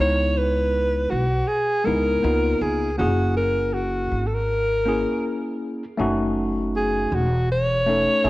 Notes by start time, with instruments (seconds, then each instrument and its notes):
Already playing: tine electric piano G#3
0.00 upright bass C#2, tine electric piano B3 D#4 E4, alto saxophone C#5
0.38 alto saxophone B4
1.10 upright bass B1, alto saxophone F#4
1.48 alto saxophone G#4
1.84 upright bass C#2, tine electric piano G#3 B3 D#4 E4, alto saxophone A#4
2.23 upright bass C#2, tine electric piano A#3 B3 D#4 F4
2.61 upright bass C#2, alto saxophone G#4
2.98 upright bass F#1, tine electric piano A#3 C#4 E4 G#4, alto saxophone F#4
3.37 alto saxophone A#4
3.74 alto saxophone F#4
4.12 upright bass G#1
4.27 alto saxophone A4
4.34 alto saxophone A#4
4.85 tine electric piano A#3 C#4 E4 G#4
5.98 upright bass F#1, tine electric piano A3 C#4 D#4 F#4
6.76 alto saxophone G#4
7.12 upright bass E1, alto saxophone F#4
7.52 alto saxophone C#5
7.86 tine electric piano A3 C#4 D#4 A4
8.24 upright bass B1, tine electric piano A3 C#4 D#4